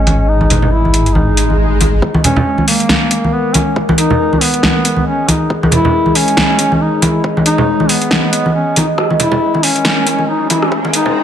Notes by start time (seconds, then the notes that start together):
Already playing: G#1 G#3 C#4 G#4 D#5
0.07 closed hi-hat, high conga
0.28 D#4
0.41 high conga
0.50 closed hi-hat, low conga
0.62 low conga
0.72 E4
0.85 high conga
0.94 closed hi-hat
1.06 closed hi-hat
1.15 D#4, swell, high conga
1.37 closed hi-hat
1.50 high conga
1.59 D#4
1.81 closed hi-hat, high conga
2.02 G#3 A#4 D#5, kick
2.14 high conga
2.24 C#4, closed hi-hat, low conga
2.36 low conga
2.58 high conga
2.68 A#3, open hi-hat
2.80 closed hi-hat
2.89 snare, high conga
3.11 closed hi-hat
3.24 high conga
3.33 B3
3.54 C#4, closed hi-hat, high conga
3.76 kick
3.89 high conga
3.98 D#4, closed hi-hat
4.10 low conga
4.33 high conga
4.41 B3, open hi-hat
4.54 closed hi-hat
4.63 snare, high conga
4.85 closed hi-hat
4.96 high conga
5.06 C#4
5.28 D#4, closed hi-hat, high conga
5.50 C#5, kick
5.63 high conga
5.72 E4, closed hi-hat, low conga
5.85 low conga
6.06 high conga
6.15 C#4, open hi-hat
6.28 closed hi-hat
6.37 snare, high conga
6.59 closed hi-hat
6.72 high conga
6.81 D#4
7.02 E4, closed hi-hat, high conga
7.24 kick
7.37 high conga
7.46 D#4, closed hi-hat
7.58 low conga
7.80 high conga
7.89 B3, open hi-hat
8.02 closed hi-hat
8.11 snare, high conga
8.33 closed hi-hat
8.46 high conga
8.55 C#4
8.76 D#4, closed hi-hat, high conga
8.98 C#4 A#4, kick, cross-stick, riser
9.10 high conga
9.20 E4, closed hi-hat, low conga
9.32 low conga
9.55 high conga
9.63 C#4, open hi-hat
9.76 closed hi-hat
9.85 snare, high conga
10.07 closed hi-hat
10.19 high conga
10.28 D#4
10.50 E4, closed hi-hat, high conga
10.62 cross-stick
10.72 kick
10.85 high conga
10.93 D#4, closed hi-hat
11.06 low conga